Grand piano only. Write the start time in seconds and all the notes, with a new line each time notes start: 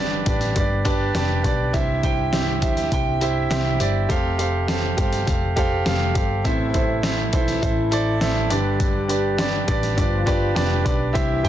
Already playing: G2 D3 D4 G4 B4 D5
0.26 D4 G4 B4 D5
0.55 D4 G4 B4 D5
0.85 D4 G4 B4 D5
1.15 D4 G4 B4 D5
1.43 D4 G4 B4 D5
1.73 G2 E4 G4 C5 E5
2.02 E4 G4 C5 G5
2.32 E4 G4 C5 E5
2.62 E4 G4 C5 E5
2.91 E4 G4 C5 G5
3.21 E4 G4 C5 E5
3.50 E4 G4 C5 E5
3.79 E4 G4 C5 D5
4.09 C3 G4 A4 C5 F5
4.38 G4 A4 C5 F5
4.68 G4 A4 C5 F5
4.97 G4 A4 C5 F5
5.27 G4 A4 C5 F5
5.56 G4 A4 C5 F5
5.86 G4 A4 C5 F5
6.14 G4 A4 F5
6.44 A2 E3 E4 A4 C5 E5
6.74 E4 A4 C5 E5
7.03 E4 A4 C5 E5
7.32 E4 A4 C5 E5
7.62 E4 A4 C5 E5
7.91 E4 A4 C5 D5
8.20 E4 A4 C5 E5
8.50 G2 D3 D4 G4 B4 D5
9.08 D4 G4 B4 D5
9.38 D4 G4 B4 D5
9.67 D4 G4 B4 D5
9.97 D4 G4 B4 D5
10.26 D4 G4 B4 D5
10.55 D4 G4 B4 D5
10.84 D4 G4 B4 D5
11.13 G2 E4 G4 C5 E5
11.43 E4 G4 C5 G5